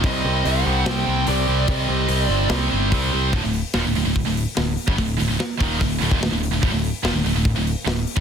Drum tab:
HH |o---o---o---o---|o---o---o---o---|o-o---o-o-o---o-|o-o-o-o-o-o-o-o-|
SD |--------o-------|--------o-------|----o-------o---|----o-------o---|
BD |o---------------|o-----------o---|o-------o------o|o-----o-o--o----|

HH |o-o-o-o-o-o-o-o-|
SD |----o-------o---|
BD |o-------o------o|